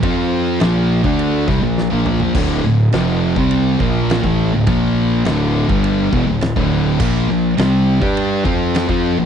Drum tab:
CC |----------------|x---------------|----------------|x---------------|
RD |b---b---b-------|----b---b---b---|b---b---b---b---|----b---b---b---|
SD |----o-----o-o---|----oo------o---|----o-------o---|----oo------o---|
T2 |--------------o-|----------------|----------------|----------------|
FT |---------------o|----------------|----------------|----------------|
BD |o------o--o-----|o------o--o--o--|o------o--o--o--|o------o--o--o--|